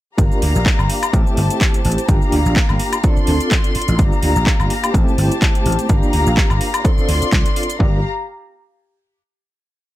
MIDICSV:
0, 0, Header, 1, 6, 480
1, 0, Start_track
1, 0, Tempo, 476190
1, 184, Time_signature, 4, 2, 24, 8
1, 10035, End_track
2, 0, Start_track
2, 0, Title_t, "String section"
2, 0, Program_c, 0, 48
2, 184, Note_on_c, 0, 82, 81
2, 185, Note_on_c, 0, 67, 75
2, 185, Note_on_c, 0, 77, 67
2, 1135, Note_off_c, 0, 77, 0
2, 1135, Note_off_c, 0, 82, 0
2, 1144, Note_on_c, 0, 81, 83
2, 1147, Note_on_c, 0, 72, 70
2, 2095, Note_off_c, 0, 81, 0
2, 2096, Note_off_c, 0, 72, 0
2, 2100, Note_on_c, 0, 82, 79
2, 2101, Note_on_c, 0, 77, 67
2, 3036, Note_off_c, 0, 67, 0
2, 3053, Note_off_c, 0, 77, 0
2, 3053, Note_off_c, 0, 82, 0
2, 3059, Note_on_c, 0, 84, 85
2, 3062, Note_on_c, 0, 65, 74
2, 3063, Note_on_c, 0, 74, 71
2, 4012, Note_off_c, 0, 84, 0
2, 4013, Note_off_c, 0, 65, 0
2, 4014, Note_off_c, 0, 74, 0
2, 4022, Note_on_c, 0, 82, 83
2, 4026, Note_on_c, 0, 67, 77
2, 4026, Note_on_c, 0, 77, 68
2, 4974, Note_off_c, 0, 82, 0
2, 4975, Note_off_c, 0, 77, 0
2, 4983, Note_on_c, 0, 81, 85
2, 4985, Note_on_c, 0, 72, 71
2, 5934, Note_off_c, 0, 81, 0
2, 5935, Note_off_c, 0, 72, 0
2, 5944, Note_on_c, 0, 82, 85
2, 5947, Note_on_c, 0, 77, 67
2, 6876, Note_off_c, 0, 67, 0
2, 6895, Note_off_c, 0, 82, 0
2, 6896, Note_off_c, 0, 77, 0
2, 6903, Note_on_c, 0, 84, 84
2, 6904, Note_on_c, 0, 65, 79
2, 6904, Note_on_c, 0, 74, 71
2, 7854, Note_off_c, 0, 65, 0
2, 7854, Note_off_c, 0, 74, 0
2, 7854, Note_off_c, 0, 84, 0
2, 7865, Note_on_c, 0, 67, 70
2, 7865, Note_on_c, 0, 77, 63
2, 7868, Note_on_c, 0, 82, 76
2, 8088, Note_off_c, 0, 67, 0
2, 8088, Note_off_c, 0, 77, 0
2, 8089, Note_off_c, 0, 82, 0
2, 10035, End_track
3, 0, Start_track
3, 0, Title_t, "Reed electric piano"
3, 0, Program_c, 1, 4
3, 177, Note_on_c, 1, 58, 80
3, 183, Note_on_c, 1, 62, 75
3, 188, Note_on_c, 1, 65, 71
3, 194, Note_on_c, 1, 67, 87
3, 1098, Note_off_c, 1, 58, 0
3, 1100, Note_off_c, 1, 62, 0
3, 1103, Note_off_c, 1, 65, 0
3, 1106, Note_off_c, 1, 67, 0
3, 1138, Note_on_c, 1, 57, 81
3, 1142, Note_on_c, 1, 60, 74
3, 1148, Note_on_c, 1, 64, 75
3, 1153, Note_on_c, 1, 67, 94
3, 2058, Note_off_c, 1, 57, 0
3, 2060, Note_off_c, 1, 60, 0
3, 2063, Note_off_c, 1, 64, 0
3, 2066, Note_off_c, 1, 67, 0
3, 2099, Note_on_c, 1, 58, 79
3, 2104, Note_on_c, 1, 62, 75
3, 2109, Note_on_c, 1, 65, 76
3, 2115, Note_on_c, 1, 67, 92
3, 3019, Note_off_c, 1, 58, 0
3, 3021, Note_off_c, 1, 62, 0
3, 3023, Note_off_c, 1, 65, 0
3, 3027, Note_off_c, 1, 67, 0
3, 3056, Note_on_c, 1, 60, 81
3, 3061, Note_on_c, 1, 62, 73
3, 3068, Note_on_c, 1, 65, 76
3, 3073, Note_on_c, 1, 69, 91
3, 3977, Note_off_c, 1, 60, 0
3, 3980, Note_off_c, 1, 62, 0
3, 3983, Note_off_c, 1, 65, 0
3, 3986, Note_off_c, 1, 69, 0
3, 4012, Note_on_c, 1, 58, 82
3, 4020, Note_on_c, 1, 62, 73
3, 4025, Note_on_c, 1, 65, 72
3, 4030, Note_on_c, 1, 67, 93
3, 4935, Note_off_c, 1, 58, 0
3, 4939, Note_off_c, 1, 62, 0
3, 4941, Note_off_c, 1, 65, 0
3, 4944, Note_off_c, 1, 67, 0
3, 4977, Note_on_c, 1, 57, 80
3, 4979, Note_on_c, 1, 60, 75
3, 4986, Note_on_c, 1, 64, 79
3, 4992, Note_on_c, 1, 67, 92
3, 5897, Note_off_c, 1, 57, 0
3, 5899, Note_off_c, 1, 60, 0
3, 5902, Note_off_c, 1, 64, 0
3, 5905, Note_off_c, 1, 67, 0
3, 5937, Note_on_c, 1, 58, 82
3, 5941, Note_on_c, 1, 62, 75
3, 5947, Note_on_c, 1, 65, 79
3, 5953, Note_on_c, 1, 67, 95
3, 6858, Note_off_c, 1, 58, 0
3, 6859, Note_off_c, 1, 62, 0
3, 6862, Note_off_c, 1, 65, 0
3, 6866, Note_off_c, 1, 67, 0
3, 6897, Note_on_c, 1, 60, 82
3, 6903, Note_on_c, 1, 62, 77
3, 6907, Note_on_c, 1, 65, 74
3, 6912, Note_on_c, 1, 69, 89
3, 7818, Note_off_c, 1, 60, 0
3, 7821, Note_off_c, 1, 62, 0
3, 7822, Note_off_c, 1, 65, 0
3, 7825, Note_off_c, 1, 69, 0
3, 7855, Note_on_c, 1, 58, 85
3, 7863, Note_on_c, 1, 62, 81
3, 7870, Note_on_c, 1, 65, 81
3, 7878, Note_on_c, 1, 67, 97
3, 8043, Note_off_c, 1, 58, 0
3, 8047, Note_off_c, 1, 62, 0
3, 8050, Note_off_c, 1, 65, 0
3, 8055, Note_off_c, 1, 67, 0
3, 10035, End_track
4, 0, Start_track
4, 0, Title_t, "Slap bass"
4, 0, Program_c, 2, 36
4, 183, Note_on_c, 2, 31, 99
4, 284, Note_off_c, 2, 31, 0
4, 428, Note_on_c, 2, 38, 81
4, 526, Note_off_c, 2, 38, 0
4, 560, Note_on_c, 2, 34, 95
4, 640, Note_off_c, 2, 34, 0
4, 797, Note_on_c, 2, 31, 80
4, 878, Note_off_c, 2, 31, 0
4, 1144, Note_on_c, 2, 33, 88
4, 1244, Note_off_c, 2, 33, 0
4, 1385, Note_on_c, 2, 31, 93
4, 1485, Note_off_c, 2, 31, 0
4, 1866, Note_on_c, 2, 33, 79
4, 1965, Note_off_c, 2, 33, 0
4, 2103, Note_on_c, 2, 31, 104
4, 2203, Note_off_c, 2, 31, 0
4, 2342, Note_on_c, 2, 38, 78
4, 2443, Note_off_c, 2, 38, 0
4, 2477, Note_on_c, 2, 34, 97
4, 2558, Note_off_c, 2, 34, 0
4, 2718, Note_on_c, 2, 31, 85
4, 2799, Note_off_c, 2, 31, 0
4, 3306, Note_on_c, 2, 38, 83
4, 3405, Note_off_c, 2, 38, 0
4, 3915, Note_on_c, 2, 33, 100
4, 3997, Note_off_c, 2, 33, 0
4, 4022, Note_on_c, 2, 31, 103
4, 4123, Note_off_c, 2, 31, 0
4, 4263, Note_on_c, 2, 38, 85
4, 4363, Note_off_c, 2, 38, 0
4, 4396, Note_on_c, 2, 34, 101
4, 4477, Note_off_c, 2, 34, 0
4, 4636, Note_on_c, 2, 31, 82
4, 4717, Note_off_c, 2, 31, 0
4, 4981, Note_on_c, 2, 33, 93
4, 5082, Note_off_c, 2, 33, 0
4, 5222, Note_on_c, 2, 31, 95
4, 5323, Note_off_c, 2, 31, 0
4, 5702, Note_on_c, 2, 33, 83
4, 5803, Note_off_c, 2, 33, 0
4, 5942, Note_on_c, 2, 31, 101
4, 6043, Note_off_c, 2, 31, 0
4, 6187, Note_on_c, 2, 38, 85
4, 6285, Note_off_c, 2, 38, 0
4, 6318, Note_on_c, 2, 34, 103
4, 6398, Note_off_c, 2, 34, 0
4, 6558, Note_on_c, 2, 31, 87
4, 6638, Note_off_c, 2, 31, 0
4, 7144, Note_on_c, 2, 38, 82
4, 7244, Note_off_c, 2, 38, 0
4, 7383, Note_on_c, 2, 36, 102
4, 7483, Note_off_c, 2, 36, 0
4, 7863, Note_on_c, 2, 31, 97
4, 8087, Note_off_c, 2, 31, 0
4, 10035, End_track
5, 0, Start_track
5, 0, Title_t, "Muted slap bass strokes"
5, 3197, Note_on_c, 9, 29, 44
5, 3298, Note_off_c, 9, 29, 0
5, 3786, Note_on_c, 9, 29, 42
5, 3887, Note_off_c, 9, 29, 0
5, 7038, Note_on_c, 9, 29, 44
5, 7139, Note_off_c, 9, 29, 0
5, 7281, Note_on_c, 9, 29, 44
5, 7382, Note_off_c, 9, 29, 0
5, 10035, End_track
6, 0, Start_track
6, 0, Title_t, "Drums"
6, 184, Note_on_c, 9, 36, 119
6, 185, Note_on_c, 9, 42, 70
6, 187, Note_on_c, 9, 69, 55
6, 285, Note_off_c, 9, 36, 0
6, 286, Note_off_c, 9, 42, 0
6, 288, Note_off_c, 9, 69, 0
6, 321, Note_on_c, 9, 69, 35
6, 422, Note_off_c, 9, 69, 0
6, 424, Note_on_c, 9, 46, 108
6, 525, Note_off_c, 9, 46, 0
6, 558, Note_on_c, 9, 69, 66
6, 659, Note_off_c, 9, 69, 0
6, 664, Note_on_c, 9, 36, 115
6, 667, Note_on_c, 9, 69, 59
6, 668, Note_on_c, 9, 39, 127
6, 764, Note_off_c, 9, 36, 0
6, 768, Note_off_c, 9, 69, 0
6, 769, Note_off_c, 9, 39, 0
6, 796, Note_on_c, 9, 76, 63
6, 798, Note_on_c, 9, 69, 34
6, 896, Note_off_c, 9, 76, 0
6, 899, Note_off_c, 9, 69, 0
6, 903, Note_on_c, 9, 46, 111
6, 1004, Note_off_c, 9, 46, 0
6, 1035, Note_on_c, 9, 42, 56
6, 1035, Note_on_c, 9, 76, 80
6, 1038, Note_on_c, 9, 69, 70
6, 1136, Note_off_c, 9, 42, 0
6, 1136, Note_off_c, 9, 76, 0
6, 1139, Note_off_c, 9, 69, 0
6, 1143, Note_on_c, 9, 36, 121
6, 1144, Note_on_c, 9, 42, 70
6, 1146, Note_on_c, 9, 69, 55
6, 1244, Note_off_c, 9, 36, 0
6, 1245, Note_off_c, 9, 42, 0
6, 1247, Note_off_c, 9, 69, 0
6, 1278, Note_on_c, 9, 69, 34
6, 1379, Note_off_c, 9, 69, 0
6, 1383, Note_on_c, 9, 46, 102
6, 1484, Note_off_c, 9, 46, 0
6, 1516, Note_on_c, 9, 42, 57
6, 1518, Note_on_c, 9, 69, 71
6, 1617, Note_off_c, 9, 42, 0
6, 1619, Note_off_c, 9, 69, 0
6, 1623, Note_on_c, 9, 36, 115
6, 1624, Note_on_c, 9, 42, 74
6, 1626, Note_on_c, 9, 69, 61
6, 1627, Note_on_c, 9, 39, 127
6, 1724, Note_off_c, 9, 36, 0
6, 1725, Note_off_c, 9, 42, 0
6, 1727, Note_off_c, 9, 69, 0
6, 1728, Note_off_c, 9, 39, 0
6, 1756, Note_on_c, 9, 42, 59
6, 1758, Note_on_c, 9, 69, 36
6, 1857, Note_off_c, 9, 42, 0
6, 1859, Note_off_c, 9, 69, 0
6, 1862, Note_on_c, 9, 46, 104
6, 1931, Note_on_c, 9, 42, 68
6, 1963, Note_off_c, 9, 46, 0
6, 1997, Note_off_c, 9, 42, 0
6, 1997, Note_on_c, 9, 42, 55
6, 2000, Note_on_c, 9, 69, 66
6, 2098, Note_off_c, 9, 42, 0
6, 2100, Note_off_c, 9, 69, 0
6, 2102, Note_on_c, 9, 36, 127
6, 2102, Note_on_c, 9, 42, 67
6, 2104, Note_on_c, 9, 69, 55
6, 2203, Note_off_c, 9, 36, 0
6, 2203, Note_off_c, 9, 42, 0
6, 2205, Note_off_c, 9, 69, 0
6, 2237, Note_on_c, 9, 69, 33
6, 2338, Note_off_c, 9, 69, 0
6, 2341, Note_on_c, 9, 46, 104
6, 2442, Note_off_c, 9, 46, 0
6, 2476, Note_on_c, 9, 69, 64
6, 2577, Note_off_c, 9, 69, 0
6, 2583, Note_on_c, 9, 36, 126
6, 2583, Note_on_c, 9, 69, 56
6, 2584, Note_on_c, 9, 39, 127
6, 2684, Note_off_c, 9, 36, 0
6, 2684, Note_off_c, 9, 69, 0
6, 2685, Note_off_c, 9, 39, 0
6, 2712, Note_on_c, 9, 76, 68
6, 2714, Note_on_c, 9, 69, 31
6, 2813, Note_off_c, 9, 76, 0
6, 2815, Note_off_c, 9, 69, 0
6, 2817, Note_on_c, 9, 46, 112
6, 2918, Note_off_c, 9, 46, 0
6, 2950, Note_on_c, 9, 42, 53
6, 2950, Note_on_c, 9, 76, 79
6, 2952, Note_on_c, 9, 69, 66
6, 3050, Note_off_c, 9, 42, 0
6, 3050, Note_off_c, 9, 76, 0
6, 3053, Note_off_c, 9, 69, 0
6, 3060, Note_on_c, 9, 42, 67
6, 3062, Note_on_c, 9, 36, 127
6, 3063, Note_on_c, 9, 69, 56
6, 3161, Note_off_c, 9, 42, 0
6, 3163, Note_off_c, 9, 36, 0
6, 3163, Note_off_c, 9, 69, 0
6, 3192, Note_on_c, 9, 69, 34
6, 3292, Note_off_c, 9, 69, 0
6, 3297, Note_on_c, 9, 46, 105
6, 3398, Note_off_c, 9, 46, 0
6, 3431, Note_on_c, 9, 42, 53
6, 3434, Note_on_c, 9, 69, 66
6, 3532, Note_off_c, 9, 42, 0
6, 3535, Note_off_c, 9, 69, 0
6, 3540, Note_on_c, 9, 42, 68
6, 3542, Note_on_c, 9, 36, 123
6, 3542, Note_on_c, 9, 69, 59
6, 3543, Note_on_c, 9, 39, 127
6, 3640, Note_off_c, 9, 42, 0
6, 3643, Note_off_c, 9, 36, 0
6, 3643, Note_off_c, 9, 69, 0
6, 3644, Note_off_c, 9, 39, 0
6, 3671, Note_on_c, 9, 42, 59
6, 3673, Note_on_c, 9, 69, 35
6, 3771, Note_off_c, 9, 42, 0
6, 3774, Note_off_c, 9, 69, 0
6, 3779, Note_on_c, 9, 46, 113
6, 3846, Note_on_c, 9, 42, 65
6, 3879, Note_off_c, 9, 46, 0
6, 3911, Note_off_c, 9, 42, 0
6, 3911, Note_on_c, 9, 42, 53
6, 3914, Note_on_c, 9, 69, 65
6, 4012, Note_off_c, 9, 42, 0
6, 4014, Note_off_c, 9, 69, 0
6, 4020, Note_on_c, 9, 42, 65
6, 4022, Note_on_c, 9, 36, 127
6, 4022, Note_on_c, 9, 69, 55
6, 4121, Note_off_c, 9, 42, 0
6, 4122, Note_off_c, 9, 36, 0
6, 4123, Note_off_c, 9, 69, 0
6, 4157, Note_on_c, 9, 69, 34
6, 4258, Note_off_c, 9, 69, 0
6, 4259, Note_on_c, 9, 46, 115
6, 4360, Note_off_c, 9, 46, 0
6, 4394, Note_on_c, 9, 69, 66
6, 4495, Note_off_c, 9, 69, 0
6, 4501, Note_on_c, 9, 69, 57
6, 4502, Note_on_c, 9, 36, 127
6, 4502, Note_on_c, 9, 39, 125
6, 4602, Note_off_c, 9, 36, 0
6, 4602, Note_off_c, 9, 69, 0
6, 4603, Note_off_c, 9, 39, 0
6, 4634, Note_on_c, 9, 76, 69
6, 4637, Note_on_c, 9, 69, 33
6, 4735, Note_off_c, 9, 76, 0
6, 4738, Note_off_c, 9, 69, 0
6, 4740, Note_on_c, 9, 46, 119
6, 4841, Note_off_c, 9, 46, 0
6, 4875, Note_on_c, 9, 42, 53
6, 4875, Note_on_c, 9, 76, 87
6, 4877, Note_on_c, 9, 69, 65
6, 4975, Note_off_c, 9, 42, 0
6, 4975, Note_off_c, 9, 76, 0
6, 4978, Note_off_c, 9, 69, 0
6, 4982, Note_on_c, 9, 36, 127
6, 4985, Note_on_c, 9, 42, 64
6, 4987, Note_on_c, 9, 69, 54
6, 5082, Note_off_c, 9, 36, 0
6, 5086, Note_off_c, 9, 42, 0
6, 5088, Note_off_c, 9, 69, 0
6, 5122, Note_on_c, 9, 69, 34
6, 5222, Note_off_c, 9, 69, 0
6, 5223, Note_on_c, 9, 46, 107
6, 5324, Note_off_c, 9, 46, 0
6, 5358, Note_on_c, 9, 42, 55
6, 5360, Note_on_c, 9, 69, 64
6, 5459, Note_off_c, 9, 42, 0
6, 5461, Note_off_c, 9, 69, 0
6, 5462, Note_on_c, 9, 36, 125
6, 5464, Note_on_c, 9, 42, 68
6, 5466, Note_on_c, 9, 69, 54
6, 5467, Note_on_c, 9, 39, 127
6, 5563, Note_off_c, 9, 36, 0
6, 5565, Note_off_c, 9, 42, 0
6, 5567, Note_off_c, 9, 69, 0
6, 5568, Note_off_c, 9, 39, 0
6, 5596, Note_on_c, 9, 42, 55
6, 5598, Note_on_c, 9, 69, 34
6, 5697, Note_off_c, 9, 42, 0
6, 5699, Note_off_c, 9, 69, 0
6, 5702, Note_on_c, 9, 46, 108
6, 5768, Note_on_c, 9, 42, 60
6, 5803, Note_off_c, 9, 46, 0
6, 5834, Note_off_c, 9, 42, 0
6, 5834, Note_on_c, 9, 42, 52
6, 5836, Note_on_c, 9, 69, 65
6, 5935, Note_off_c, 9, 42, 0
6, 5937, Note_off_c, 9, 69, 0
6, 5940, Note_on_c, 9, 42, 64
6, 5942, Note_on_c, 9, 36, 126
6, 5942, Note_on_c, 9, 69, 57
6, 6041, Note_off_c, 9, 42, 0
6, 6043, Note_off_c, 9, 36, 0
6, 6043, Note_off_c, 9, 69, 0
6, 6076, Note_on_c, 9, 69, 33
6, 6177, Note_off_c, 9, 69, 0
6, 6180, Note_on_c, 9, 46, 109
6, 6280, Note_off_c, 9, 46, 0
6, 6316, Note_on_c, 9, 69, 66
6, 6417, Note_off_c, 9, 69, 0
6, 6423, Note_on_c, 9, 36, 127
6, 6424, Note_on_c, 9, 69, 56
6, 6425, Note_on_c, 9, 39, 121
6, 6524, Note_off_c, 9, 36, 0
6, 6525, Note_off_c, 9, 69, 0
6, 6526, Note_off_c, 9, 39, 0
6, 6553, Note_on_c, 9, 76, 69
6, 6555, Note_on_c, 9, 69, 32
6, 6654, Note_off_c, 9, 76, 0
6, 6656, Note_off_c, 9, 69, 0
6, 6661, Note_on_c, 9, 46, 114
6, 6762, Note_off_c, 9, 46, 0
6, 6793, Note_on_c, 9, 42, 51
6, 6793, Note_on_c, 9, 76, 86
6, 6796, Note_on_c, 9, 69, 68
6, 6894, Note_off_c, 9, 42, 0
6, 6894, Note_off_c, 9, 76, 0
6, 6897, Note_off_c, 9, 69, 0
6, 6902, Note_on_c, 9, 42, 66
6, 6903, Note_on_c, 9, 36, 127
6, 6905, Note_on_c, 9, 69, 56
6, 7003, Note_off_c, 9, 36, 0
6, 7003, Note_off_c, 9, 42, 0
6, 7005, Note_off_c, 9, 69, 0
6, 7037, Note_on_c, 9, 69, 34
6, 7138, Note_off_c, 9, 69, 0
6, 7143, Note_on_c, 9, 46, 112
6, 7243, Note_off_c, 9, 46, 0
6, 7277, Note_on_c, 9, 42, 52
6, 7280, Note_on_c, 9, 69, 68
6, 7378, Note_off_c, 9, 42, 0
6, 7380, Note_off_c, 9, 69, 0
6, 7383, Note_on_c, 9, 36, 124
6, 7384, Note_on_c, 9, 42, 67
6, 7386, Note_on_c, 9, 69, 58
6, 7387, Note_on_c, 9, 39, 122
6, 7483, Note_off_c, 9, 36, 0
6, 7485, Note_off_c, 9, 42, 0
6, 7487, Note_off_c, 9, 69, 0
6, 7488, Note_off_c, 9, 39, 0
6, 7516, Note_on_c, 9, 42, 53
6, 7518, Note_on_c, 9, 69, 36
6, 7617, Note_off_c, 9, 42, 0
6, 7619, Note_off_c, 9, 69, 0
6, 7624, Note_on_c, 9, 46, 106
6, 7692, Note_on_c, 9, 42, 61
6, 7724, Note_off_c, 9, 46, 0
6, 7757, Note_off_c, 9, 42, 0
6, 7757, Note_on_c, 9, 42, 49
6, 7760, Note_on_c, 9, 69, 66
6, 7858, Note_off_c, 9, 42, 0
6, 7861, Note_off_c, 9, 69, 0
6, 7863, Note_on_c, 9, 36, 117
6, 7964, Note_off_c, 9, 36, 0
6, 10035, End_track
0, 0, End_of_file